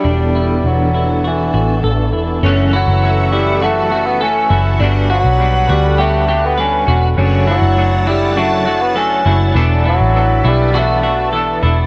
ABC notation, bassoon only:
X:1
M:4/4
L:1/16
Q:1/4=101
K:F#phr
V:1 name="Bassoon" clef=bass
G,4 F,4 E,6 z2 | z2 F,4 G,2 A,3 B, C3 z | z2 F,4 G,2 A,3 B, C3 z | z2 F,4 G,2 A,3 B, C3 z |
z2 F,4 G,2 A,4 z4 |]